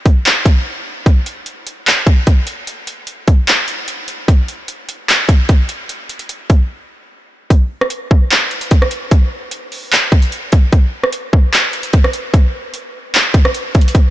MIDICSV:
0, 0, Header, 1, 2, 480
1, 0, Start_track
1, 0, Tempo, 402685
1, 1265, Time_signature, 4, 2, 24, 8
1, 16811, End_track
2, 0, Start_track
2, 0, Title_t, "Drums"
2, 66, Note_on_c, 9, 36, 94
2, 66, Note_on_c, 9, 42, 68
2, 185, Note_off_c, 9, 42, 0
2, 186, Note_off_c, 9, 36, 0
2, 305, Note_on_c, 9, 42, 76
2, 313, Note_on_c, 9, 39, 120
2, 425, Note_off_c, 9, 42, 0
2, 432, Note_off_c, 9, 39, 0
2, 542, Note_on_c, 9, 36, 94
2, 544, Note_on_c, 9, 42, 75
2, 662, Note_off_c, 9, 36, 0
2, 663, Note_off_c, 9, 42, 0
2, 1265, Note_on_c, 9, 36, 104
2, 1265, Note_on_c, 9, 42, 81
2, 1384, Note_off_c, 9, 36, 0
2, 1385, Note_off_c, 9, 42, 0
2, 1505, Note_on_c, 9, 42, 66
2, 1624, Note_off_c, 9, 42, 0
2, 1741, Note_on_c, 9, 42, 78
2, 1860, Note_off_c, 9, 42, 0
2, 1986, Note_on_c, 9, 42, 69
2, 2105, Note_off_c, 9, 42, 0
2, 2226, Note_on_c, 9, 42, 79
2, 2233, Note_on_c, 9, 39, 119
2, 2345, Note_off_c, 9, 42, 0
2, 2352, Note_off_c, 9, 39, 0
2, 2462, Note_on_c, 9, 36, 94
2, 2464, Note_on_c, 9, 42, 75
2, 2582, Note_off_c, 9, 36, 0
2, 2583, Note_off_c, 9, 42, 0
2, 2704, Note_on_c, 9, 42, 72
2, 2706, Note_on_c, 9, 36, 91
2, 2823, Note_off_c, 9, 42, 0
2, 2825, Note_off_c, 9, 36, 0
2, 2941, Note_on_c, 9, 42, 73
2, 3060, Note_off_c, 9, 42, 0
2, 3186, Note_on_c, 9, 42, 77
2, 3305, Note_off_c, 9, 42, 0
2, 3423, Note_on_c, 9, 42, 67
2, 3542, Note_off_c, 9, 42, 0
2, 3659, Note_on_c, 9, 42, 75
2, 3778, Note_off_c, 9, 42, 0
2, 3904, Note_on_c, 9, 42, 68
2, 3906, Note_on_c, 9, 36, 96
2, 4023, Note_off_c, 9, 42, 0
2, 4025, Note_off_c, 9, 36, 0
2, 4144, Note_on_c, 9, 42, 76
2, 4151, Note_on_c, 9, 39, 121
2, 4263, Note_off_c, 9, 42, 0
2, 4270, Note_off_c, 9, 39, 0
2, 4384, Note_on_c, 9, 42, 73
2, 4503, Note_off_c, 9, 42, 0
2, 4623, Note_on_c, 9, 42, 72
2, 4742, Note_off_c, 9, 42, 0
2, 4862, Note_on_c, 9, 42, 76
2, 4982, Note_off_c, 9, 42, 0
2, 5105, Note_on_c, 9, 36, 102
2, 5107, Note_on_c, 9, 42, 75
2, 5224, Note_off_c, 9, 36, 0
2, 5226, Note_off_c, 9, 42, 0
2, 5345, Note_on_c, 9, 42, 70
2, 5464, Note_off_c, 9, 42, 0
2, 5581, Note_on_c, 9, 42, 78
2, 5700, Note_off_c, 9, 42, 0
2, 5824, Note_on_c, 9, 42, 72
2, 5944, Note_off_c, 9, 42, 0
2, 6065, Note_on_c, 9, 42, 78
2, 6072, Note_on_c, 9, 39, 115
2, 6184, Note_off_c, 9, 42, 0
2, 6191, Note_off_c, 9, 39, 0
2, 6302, Note_on_c, 9, 36, 99
2, 6304, Note_on_c, 9, 42, 77
2, 6421, Note_off_c, 9, 36, 0
2, 6423, Note_off_c, 9, 42, 0
2, 6543, Note_on_c, 9, 42, 73
2, 6545, Note_on_c, 9, 36, 98
2, 6662, Note_off_c, 9, 42, 0
2, 6665, Note_off_c, 9, 36, 0
2, 6781, Note_on_c, 9, 42, 76
2, 6900, Note_off_c, 9, 42, 0
2, 7024, Note_on_c, 9, 42, 78
2, 7143, Note_off_c, 9, 42, 0
2, 7264, Note_on_c, 9, 42, 61
2, 7382, Note_off_c, 9, 42, 0
2, 7382, Note_on_c, 9, 42, 58
2, 7500, Note_off_c, 9, 42, 0
2, 7500, Note_on_c, 9, 42, 78
2, 7619, Note_off_c, 9, 42, 0
2, 7744, Note_on_c, 9, 42, 71
2, 7745, Note_on_c, 9, 36, 99
2, 7864, Note_off_c, 9, 42, 0
2, 7865, Note_off_c, 9, 36, 0
2, 8944, Note_on_c, 9, 36, 105
2, 8945, Note_on_c, 9, 42, 83
2, 9063, Note_off_c, 9, 36, 0
2, 9064, Note_off_c, 9, 42, 0
2, 9313, Note_on_c, 9, 37, 94
2, 9419, Note_on_c, 9, 42, 80
2, 9433, Note_off_c, 9, 37, 0
2, 9538, Note_off_c, 9, 42, 0
2, 9666, Note_on_c, 9, 36, 97
2, 9785, Note_off_c, 9, 36, 0
2, 9904, Note_on_c, 9, 42, 76
2, 9911, Note_on_c, 9, 39, 125
2, 10024, Note_off_c, 9, 42, 0
2, 10031, Note_off_c, 9, 39, 0
2, 10145, Note_on_c, 9, 42, 47
2, 10264, Note_off_c, 9, 42, 0
2, 10265, Note_on_c, 9, 42, 70
2, 10382, Note_off_c, 9, 42, 0
2, 10382, Note_on_c, 9, 42, 75
2, 10386, Note_on_c, 9, 36, 99
2, 10501, Note_off_c, 9, 42, 0
2, 10505, Note_off_c, 9, 36, 0
2, 10513, Note_on_c, 9, 37, 90
2, 10621, Note_on_c, 9, 42, 77
2, 10632, Note_off_c, 9, 37, 0
2, 10740, Note_off_c, 9, 42, 0
2, 10863, Note_on_c, 9, 42, 81
2, 10864, Note_on_c, 9, 36, 113
2, 10982, Note_off_c, 9, 42, 0
2, 10983, Note_off_c, 9, 36, 0
2, 11341, Note_on_c, 9, 42, 81
2, 11460, Note_off_c, 9, 42, 0
2, 11585, Note_on_c, 9, 46, 49
2, 11704, Note_off_c, 9, 46, 0
2, 11824, Note_on_c, 9, 42, 79
2, 11831, Note_on_c, 9, 39, 123
2, 11944, Note_off_c, 9, 42, 0
2, 11951, Note_off_c, 9, 39, 0
2, 12063, Note_on_c, 9, 36, 100
2, 12066, Note_on_c, 9, 42, 47
2, 12182, Note_off_c, 9, 36, 0
2, 12185, Note_off_c, 9, 42, 0
2, 12185, Note_on_c, 9, 42, 74
2, 12304, Note_off_c, 9, 42, 0
2, 12304, Note_on_c, 9, 42, 76
2, 12423, Note_off_c, 9, 42, 0
2, 12542, Note_on_c, 9, 42, 78
2, 12548, Note_on_c, 9, 36, 102
2, 12661, Note_off_c, 9, 42, 0
2, 12667, Note_off_c, 9, 36, 0
2, 12784, Note_on_c, 9, 42, 79
2, 12785, Note_on_c, 9, 36, 106
2, 12903, Note_off_c, 9, 42, 0
2, 12904, Note_off_c, 9, 36, 0
2, 13154, Note_on_c, 9, 37, 93
2, 13261, Note_on_c, 9, 42, 82
2, 13273, Note_off_c, 9, 37, 0
2, 13380, Note_off_c, 9, 42, 0
2, 13506, Note_on_c, 9, 36, 98
2, 13626, Note_off_c, 9, 36, 0
2, 13744, Note_on_c, 9, 42, 81
2, 13751, Note_on_c, 9, 39, 124
2, 13863, Note_off_c, 9, 42, 0
2, 13870, Note_off_c, 9, 39, 0
2, 13984, Note_on_c, 9, 42, 44
2, 14103, Note_off_c, 9, 42, 0
2, 14104, Note_on_c, 9, 42, 74
2, 14223, Note_off_c, 9, 42, 0
2, 14224, Note_on_c, 9, 42, 75
2, 14227, Note_on_c, 9, 36, 98
2, 14343, Note_off_c, 9, 42, 0
2, 14346, Note_off_c, 9, 36, 0
2, 14355, Note_on_c, 9, 37, 94
2, 14463, Note_on_c, 9, 42, 77
2, 14474, Note_off_c, 9, 37, 0
2, 14583, Note_off_c, 9, 42, 0
2, 14705, Note_on_c, 9, 36, 109
2, 14705, Note_on_c, 9, 42, 83
2, 14824, Note_off_c, 9, 36, 0
2, 14824, Note_off_c, 9, 42, 0
2, 15182, Note_on_c, 9, 42, 80
2, 15301, Note_off_c, 9, 42, 0
2, 15666, Note_on_c, 9, 42, 81
2, 15673, Note_on_c, 9, 39, 126
2, 15785, Note_off_c, 9, 42, 0
2, 15792, Note_off_c, 9, 39, 0
2, 15903, Note_on_c, 9, 36, 103
2, 15906, Note_on_c, 9, 42, 75
2, 16022, Note_off_c, 9, 36, 0
2, 16025, Note_off_c, 9, 42, 0
2, 16032, Note_on_c, 9, 37, 104
2, 16145, Note_on_c, 9, 42, 74
2, 16151, Note_off_c, 9, 37, 0
2, 16264, Note_off_c, 9, 42, 0
2, 16386, Note_on_c, 9, 42, 47
2, 16388, Note_on_c, 9, 36, 96
2, 16464, Note_off_c, 9, 42, 0
2, 16464, Note_on_c, 9, 42, 64
2, 16508, Note_off_c, 9, 36, 0
2, 16545, Note_off_c, 9, 42, 0
2, 16545, Note_on_c, 9, 42, 83
2, 16625, Note_on_c, 9, 36, 102
2, 16626, Note_off_c, 9, 42, 0
2, 16626, Note_on_c, 9, 42, 80
2, 16744, Note_off_c, 9, 36, 0
2, 16745, Note_off_c, 9, 42, 0
2, 16811, End_track
0, 0, End_of_file